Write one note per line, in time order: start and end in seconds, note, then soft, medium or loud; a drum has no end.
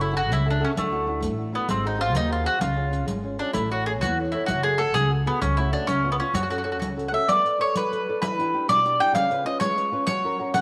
0.00 0.31 F#1 medium
0.00 0.14 F#3 medium
0.00 0.15 E4 medium
0.00 0.12 F#4 soft
0.00 0.12 G#4 soft
0.00 0.13 A4 soft
0.13 0.39 F#4 medium
0.13 0.30 F#4 loud
0.13 0.39 G#4 soft
0.13 0.40 A4 soft
0.30 0.61 C#2 medium
0.30 0.61 C#3 medium
0.30 0.47 E4 medium
0.30 riq soft
0.46 0.59 F#4 soft
0.46 0.60 G#4 soft
0.46 0.59 A4 soft
0.50 0.63 D4 medium
0.60 0.73 F#4 soft
0.60 0.73 G#4 soft
0.60 0.73 A4 medium
0.65 0.70 C#4 medium
0.75 1.25 D2 medium
0.75 1.06 D3 medium
0.75 1.21 A3 medium
0.75 riq medium
0.92 1.06 D4 soft
0.92 1.06 E4 soft
0.92 1.07 F#4 soft
1.07 1.32 D4 medium
1.07 1.32 E4 soft
1.07 1.33 F#4 medium
1.20 1.53 A1 medium
1.20 1.52 A3 medium
1.20 riq soft
1.38 1.51 D4 soft
1.38 1.52 E4 soft
1.38 1.53 F#4 soft
1.53 1.68 B3 medium
1.53 1.65 D4 soft
1.53 1.65 E4 soft
1.53 1.66 F#4 medium
1.68 2.14 G#1 loud
1.68 1.99 G#3 medium
1.68 1.85 C4 medium
1.68 riq soft
1.85 2.00 D#4 medium
1.85 1.97 F#4 soft
1.85 1.97 G#4 soft
1.85 1.98 C5 soft
1.98 2.14 F4 loud
1.98 2.24 F#4 soft
1.98 2.24 G#4 soft
1.98 2.24 C5 medium
2.14 2.45 D#2 medium
2.14 2.45 D#3 medium
2.14 2.32 D#4 loud
2.14 riq soft
2.29 2.46 F4 medium
2.29 2.43 F#4 soft
2.29 2.43 G#4 soft
2.29 2.43 C5 soft
2.44 2.57 F#4 soft
2.44 2.61 F#4 loud
2.44 2.57 G#4 soft
2.44 2.57 C5 soft
2.59 3.08 C#2 medium
2.59 2.91 C#3 medium
2.59 3.05 F4 medium
2.59 riq soft
2.76 2.90 C#4 soft
2.76 2.90 F4 soft
2.76 2.91 G#4 soft
2.91 3.17 C#4 soft
2.91 3.17 F4 soft
2.91 3.17 G#4 soft
2.91 riq soft
3.06 3.39 G#1 medium
3.06 3.38 G#3 medium
3.06 riq soft
3.23 3.38 C#4 soft
3.23 3.38 F4 soft
3.23 3.39 G#4 soft
3.39 3.51 C#4 soft
3.39 3.53 D4 medium
3.39 3.52 F4 soft
3.39 3.52 G#4 soft
3.53 4.04 A1 medium
3.53 3.85 A3 medium
3.53 3.70 E4 medium
3.53 riq soft
3.70 3.87 E4 soft
3.70 3.86 F#4 medium
3.70 3.86 A4 soft
3.70 3.88 C#5 soft
3.86 4.13 E4 soft
3.86 3.91 G#4 medium
3.86 4.13 A4 soft
3.86 4.14 C#5 medium
4.01 4.34 E2 medium
4.01 4.33 E3 medium
4.01 4.17 F#4 medium
4.01 riq medium
4.19 4.33 E4 soft
4.19 4.33 A4 soft
4.19 4.33 C#5 soft
4.32 4.46 E4 medium
4.32 4.46 E4 soft
4.32 4.46 A4 soft
4.32 4.46 C#5 medium
4.46 4.96 F#1 medium
4.46 4.80 F#3 medium
4.46 4.63 F#4 medium
4.46 riq soft
4.63 4.78 F#4 soft
4.63 4.80 G#4 medium
4.63 4.79 G#4 soft
4.63 4.79 A4 medium
4.78 5.05 F#4 medium
4.78 5.05 G#4 soft
4.78 4.93 A4 loud
4.78 5.05 A4 soft
4.94 5.26 C#2 medium
4.94 5.26 C#3 medium
4.94 5.10 G#4 loud
4.94 riq soft
5.10 5.25 F#4 soft
5.10 5.25 G#4 soft
5.10 5.26 A4 soft
5.26 5.41 B3 medium
5.26 5.39 F#4 medium
5.26 5.39 G#4 soft
5.26 5.39 A4 soft
5.42 5.72 C#2 medium
5.42 5.72 C#3 medium
5.42 5.57 C#4 medium
5.42 riq soft
5.57 5.71 A3 soft
5.57 5.72 C#4 soft
5.57 5.73 E4 medium
5.57 5.71 F#4 soft
5.72 5.85 A3 soft
5.72 5.85 C#4 soft
5.72 5.87 D4 medium
5.72 5.85 F#4 medium
5.87 6.18 C#2 medium
5.87 6.19 C#3 medium
5.87 6.11 C#4 medium
5.87 riq soft
6.04 6.18 B3 soft
6.04 6.19 C#4 soft
6.04 6.19 F4 soft
6.12 6.15 B3 medium
6.19 6.31 B3 soft
6.19 6.34 C#4 medium
6.19 6.32 C#4 soft
6.19 6.32 F4 soft
6.34 6.82 F#2 medium
6.34 6.65 F#3 medium
6.34 6.42 F#4 medium
6.34 riq medium
6.43 6.49 F#4 medium
6.50 6.63 C#4 soft
6.50 6.57 F#4 medium
6.50 6.64 F#4 soft
6.50 6.64 A4 soft
6.50 riq soft
6.58 6.63 F#4 medium
6.64 6.91 C#4 soft
6.64 6.71 F#4 medium
6.64 6.91 F#4 soft
6.64 6.91 A4 medium
6.72 6.78 F#4 medium
6.79 7.12 C#2 medium
6.79 7.12 C#3 medium
6.79 6.87 F#4 soft
6.79 riq medium
6.97 7.11 C#4 soft
6.97 7.12 F#4 soft
6.97 7.11 A4 soft
6.97 riq soft
7.08 7.25 C#4 soft
7.08 7.25 A4 soft
7.08 7.13 F#5 medium
7.13 7.25 F#4 soft
7.13 7.29 E5 medium
7.28 7.45 B3 medium
7.28 7.58 D5 medium
7.28 riq medium
7.45 7.58 A4 soft
7.45 7.59 B4 soft
7.45 7.58 D5 soft
7.45 riq soft
7.59 7.85 A4 medium
7.59 7.85 B4 soft
7.59 7.76 C#5 loud
7.59 7.85 D5 medium
7.75 8.06 F#3 medium
7.75 8.20 B4 medium
7.75 riq soft
7.92 8.08 A4 soft
7.92 8.08 B4 soft
7.92 8.09 D5 soft
7.92 riq soft
8.09 8.20 A4 medium
8.09 8.21 B4 soft
8.09 8.21 D5 medium
8.22 8.53 E3 medium
8.22 8.69 B4 medium
8.22 riq medium
8.38 8.53 D4 soft
8.38 8.53 E4 soft
8.38 8.53 G4 medium
8.38 riq soft
8.54 8.79 D4 medium
8.54 8.79 E4 soft
8.54 8.79 G4 medium
8.68 8.98 B2 medium
8.68 9.01 D5 loud
8.68 riq medium
8.85 8.99 D4 soft
8.85 8.99 E4 soft
8.85 8.99 G4 soft
8.85 riq soft
9.00 9.11 D4 soft
9.00 9.12 E4 soft
9.00 9.12 G4 medium
9.00 9.14 G5 loud
9.13 9.44 C#3 medium
9.13 9.43 F5 loud
9.13 riq medium
9.31 9.44 C#4 soft
9.31 9.45 F4 soft
9.31 9.45 B4 soft
9.31 riq soft
9.45 9.70 C#4 medium
9.45 9.71 F4 soft
9.45 9.71 B4 medium
9.45 9.59 D#5 medium
9.60 9.91 G#3 medium
9.60 10.05 C#5 loud
9.60 riq medium
9.76 9.91 C#4 soft
9.76 9.91 F4 soft
9.76 9.92 B4 soft
9.76 riq soft
9.92 10.04 C#4 medium
9.92 10.04 F4 soft
9.92 10.04 B4 medium
10.07 10.38 F#3 medium
10.07 10.50 C#5 loud
10.07 riq medium
10.24 10.38 C#4 soft
10.24 10.38 F#4 soft
10.24 10.39 A#4 medium
10.39 10.61 C#4 soft
10.39 10.61 F#4 soft
10.39 10.61 A#4 medium
10.54 10.61 C#3 medium
10.54 10.61 F#5 medium
10.54 riq medium